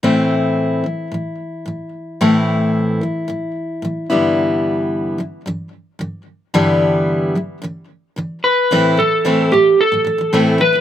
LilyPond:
<<
  \new Staff \with { instrumentName = "Electric slide guitar" } { \time 4/4 \key a \minor \tempo 4 = 111 r1 | r1 | r1 | r2. r8 b'8~ |
b'8 a'4 g'8 a'4. b'8 | }
  \new Staff \with { instrumentName = "Steel-string acoustic guitar" } { \clef bass \time 4/4 \key a \minor <a, e a c' e'>4. <a, e>8 <a, e>8 r8 <a, e>8 r8 | <a, e a c' e'>4. <a, e>8 <a, e>8 r8 <a, e>8 <g, d e g b e'>8~ | <g, d e g b e'>4. <g, d e>8 <g, d e>8 r8 <g, d e>8 r8 | <g, d e g b e'>4. <g, d e>8 <g, d e>8 r8 <g, d e>8 r8 |
<a, e a c' e'>8 a,8 <a, e a c' e'>8 <a, e>8 r16 <a, e>16 <a, e>16 <a, e>16 <a, e a c' e'>8 <a, e>16 <a, e>16 | }
>>